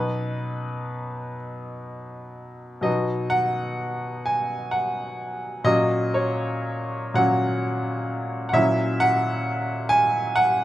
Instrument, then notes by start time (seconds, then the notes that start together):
upright piano
Already playing: B2 F#3 B3 D#4 B4
2.81 B2 F#3 B3 D#4 D#5
3.30 F#5
4.26 G#5
4.71 F#5
5.64 A#2 F#3 C#4 F#4 D#5
6.14 C#5
7.14 A#2 F#3 C#4 F#4 F#5
8.49 A#2 F#5
8.54 F#3 C#4 E4 E5
9.00 F#5
9.89 G#5
10.36 F#5